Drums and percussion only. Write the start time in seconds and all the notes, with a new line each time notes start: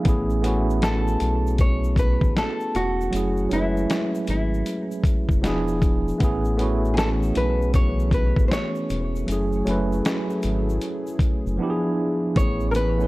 0.05 kick, closed hi-hat, shaker
0.30 shaker
0.44 closed hi-hat, shaker
0.70 shaker
0.82 snare, closed hi-hat, shaker
1.08 shaker
1.20 closed hi-hat, shaker
1.47 shaker
1.58 kick, closed hi-hat, shaker
1.84 shaker
1.96 kick, closed hi-hat, shaker
2.21 kick, shaker
2.37 snare, closed hi-hat, shaker
2.60 shaker
2.75 closed hi-hat, shaker
3.01 shaker
3.13 closed hi-hat, shaker
3.37 shaker
3.51 closed hi-hat, shaker
3.77 shaker
3.90 snare, closed hi-hat, shaker
4.15 shaker
4.27 closed hi-hat, shaker
4.54 shaker
4.66 closed hi-hat, shaker
4.91 shaker
5.04 kick, closed hi-hat, shaker
5.29 kick, shaker
5.44 snare, closed hi-hat, shaker
5.68 shaker
5.82 kick, closed hi-hat, shaker
6.08 shaker
6.20 kick, closed hi-hat, shaker
6.45 shaker
6.59 closed hi-hat, shaker
6.85 shaker
6.97 snare, closed hi-hat, shaker
7.23 shaker
7.35 closed hi-hat, shaker
7.62 shaker
7.74 kick, closed hi-hat, shaker
7.99 shaker
8.11 kick, closed hi-hat, shaker
8.36 kick, shaker
8.51 snare, closed hi-hat, shaker
8.75 shaker
8.90 closed hi-hat, shaker
9.16 shaker
9.28 closed hi-hat, shaker
9.52 shaker
9.66 closed hi-hat, shaker
9.92 shaker
10.05 snare, closed hi-hat, shaker
10.30 shaker
10.42 closed hi-hat, shaker
10.69 shaker
10.81 closed hi-hat, shaker
11.07 shaker
11.19 kick, closed hi-hat, shaker
11.47 shaker
12.36 kick, closed hi-hat, shaker
12.60 shaker
12.74 closed hi-hat, shaker
13.00 shaker